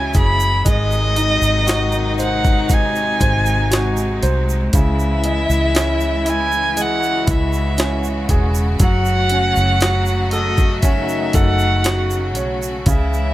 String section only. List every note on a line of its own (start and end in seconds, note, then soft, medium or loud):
0.00 0.62 C#3 medium
0.00 0.62 E3 medium
0.00 4.69 F#3 medium
0.00 0.63 E4 medium
0.64 4.68 C3 medium
0.64 8.75 G#3 medium
0.64 4.68 D#4 medium
4.74 13.34 C#3 medium
4.74 8.77 E3 medium
4.74 6.75 E4 medium
6.78 12.83 F#4 medium
8.81 12.83 F#3 medium
8.81 12.83 A3 medium
12.86 13.34 E3 medium
12.86 13.34 G#3 medium
12.86 13.34 E4 medium